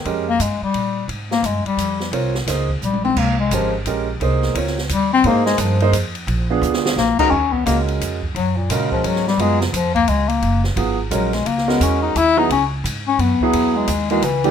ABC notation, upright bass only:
X:1
M:3/4
L:1/8
Q:"Swing" 1/4=174
K:Fm
V:1 name="Upright bass" clef=bass
F,,2 G,, z B,,2 | A,,2 G,, z F,,2 | C,,2 D,,2 B,,,2 | C,,2 A,,,2 B,,,2 |
C,,2 D,,2 E,,2 | A,,2 G,,2 F,,2 | B,,,2 =D,,2 B,,, z | [K:Ebphr] E,,2 D,,2 =F,,2 |
G,,2 B,,2 A,,2 | G,,2 =F,,2 D,,2 | G,,,2 A,,,2 B,,,2 | D,,2 F,,2 E,,2 |
D,,2 A,,2 G,, z | F,,2 E,,2 D,,2 |]